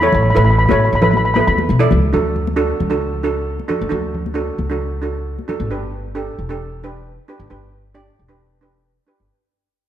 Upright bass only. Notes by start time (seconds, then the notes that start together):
0.14 A1
0.36 A1
0.71 A1
0.93 A1
1.47 E2
1.70 B1
1.92 C#2
2.13 D2
2.80 C#2
3.81 D2
3.91 D2
4.58 C#2
5.60 A1
5.70 G1
6.38 E1
7.40 G1
7.51 G1
8.19 E1
9.20 G1